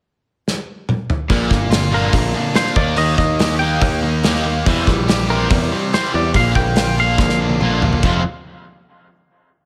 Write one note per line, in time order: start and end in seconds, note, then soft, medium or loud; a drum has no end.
0.48 snare medium
0.89 mid tom medium
1.10 floor tom medium
1.30 1.49 A#1 medium
1.30 1.49 A#2 medium
1.30 1.49 D3 medium
1.30 1.50 A#3 medium
1.30 kick medium
1.30 open hi-hat soft
1.49 2.09 G1 medium
1.49 1.69 A#2 medium
1.49 1.69 D3 medium
1.49 2.11 A#3 medium
1.49 kick medium
1.49 snare soft
1.70 1.90 A#2 medium
1.70 1.90 D3 medium
1.70 2.54 F4 medium
1.70 snare loud
1.70 open hi-hat medium
1.91 2.12 A#2 medium
1.91 2.12 D3 medium
1.91 2.13 A#3 loud
1.91 2.33 D4 medium
1.91 2.32 A#4 medium
2.12 2.33 A#1 medium
2.12 2.32 A#2 medium
2.12 2.33 D3 medium
2.12 2.76 A#3 medium
2.12 kick medium
2.12 open hi-hat medium
2.34 2.53 A#2 medium
2.34 2.53 D3 medium
2.34 2.76 D4 medium
2.54 2.75 A#2 medium
2.54 2.75 D3 medium
2.54 2.75 A#3 medium
2.54 2.76 F4 medium
2.54 2.76 C5 medium
2.54 snare loud
2.54 open hi-hat soft
2.67 snare soft
2.76 2.96 D#2 medium
2.76 2.96 D#3 medium
2.76 2.97 A#3 medium
2.76 2.97 D#4 medium
2.76 2.97 D5 medium
2.76 kick loud
2.97 3.17 D#2 medium
2.97 3.17 D#3 medium
2.97 3.17 A#3 medium
2.97 3.18 D#4 loud
2.97 3.17 D#5 loud
2.97 open hi-hat medium
3.18 3.77 D#2 medium
3.18 3.38 D#3 medium
3.18 3.38 A#3 medium
3.18 3.59 D#5 medium
3.18 kick medium
3.18 snare soft
3.39 3.58 D#3 medium
3.39 3.59 A#3 medium
3.39 4.23 G4 medium
3.39 snare loud
3.39 open hi-hat medium
3.59 3.81 D#3 medium
3.59 3.81 A#3 loud
3.59 3.82 D#4 loud
3.59 3.99 G5 loud
3.81 4.62 D#2 loud
3.81 4.01 D#3 medium
3.81 4.01 A#3 medium
3.81 kick loud
3.81 open hi-hat soft
4.02 4.22 D#3 medium
4.02 4.22 A#3 medium
4.02 4.67 D#4 medium
4.23 4.43 D#3 medium
4.23 4.44 A#3 medium
4.23 4.44 D#4 loud
4.23 4.66 G4 medium
4.23 snare medium
4.23 open hi-hat soft
4.35 snare soft
4.46 4.64 D#3 medium
4.46 4.65 A#3 medium
4.66 4.86 E2 medium
4.66 4.86 E3 medium
4.66 4.86 G3 medium
4.66 4.87 C4 medium
4.66 kick loud
4.66 open hi-hat soft
4.87 5.46 A#1 medium
4.87 5.07 E3 medium
4.87 5.07 G3 medium
4.87 kick medium
4.87 snare soft
5.08 5.27 E3 medium
5.08 5.28 G3 medium
5.08 5.92 G4 medium
5.08 snare loud
5.08 open hi-hat medium
5.30 5.49 E3 medium
5.30 5.50 G3 loud
5.30 5.50 C4 medium
5.30 5.69 A#4 medium
5.50 5.70 E2 medium
5.50 5.70 E3 medium
5.50 5.70 G3 medium
5.50 kick loud
5.50 open hi-hat medium
5.72 5.91 E3 medium
5.72 5.91 G3 medium
5.72 6.35 C4 medium
5.93 6.13 E3 loud
5.93 6.13 G3 medium
5.93 6.14 C4 loud
5.93 6.35 G4 medium
5.93 6.15 C5 medium
5.93 snare loud
5.93 open hi-hat soft
6.04 snare soft
6.14 6.34 E2 medium
6.14 6.33 E3 medium
6.14 6.33 G3 medium
6.14 6.36 D5 medium
6.34 6.54 A#1 medium
6.34 6.55 A#2 medium
6.34 6.55 D3 medium
6.34 6.56 A#3 medium
6.34 6.55 F5 medium
6.34 kick loud
6.34 open hi-hat soft
6.55 7.15 A#1 medium
6.55 6.75 A#2 medium
6.55 6.75 D3 medium
6.55 7.17 A#3 medium
6.55 6.99 G5 loud
6.55 kick medium
6.76 6.96 A#2 medium
6.76 6.96 D3 medium
6.76 7.59 F4 medium
6.76 snare loud
6.76 open hi-hat medium
6.98 7.18 A#2 medium
6.98 7.18 D3 medium
6.98 7.18 A#3 loud
6.98 7.37 D4 medium
6.98 7.38 F5 medium
7.18 7.99 A#1 loud
7.18 7.39 A#2 medium
7.18 7.39 D3 medium
7.18 7.81 A#3 medium
7.18 kick loud
7.18 snare medium
7.29 snare soft
7.39 7.60 A#2 medium
7.39 7.60 D3 medium
7.39 8.03 D4 medium
7.50 high tom medium
7.60 7.81 A#2 medium
7.60 7.82 D3 loud
7.60 7.82 A#3 loud
7.60 8.03 F4 medium
7.60 mid tom medium
7.82 8.02 A#2 medium
7.82 8.02 D3 medium
7.82 8.03 A#3 medium
7.82 floor tom medium
7.93 floor tom medium
8.03 8.23 F1 medium
8.03 8.21 F2 loud
8.03 8.21 C3 loud
8.03 8.21 F3 loud
8.03 8.21 G#3 loud
8.03 8.21 C4 loud
8.03 8.21 F4 loud
8.03 kick medium
8.03 crash medium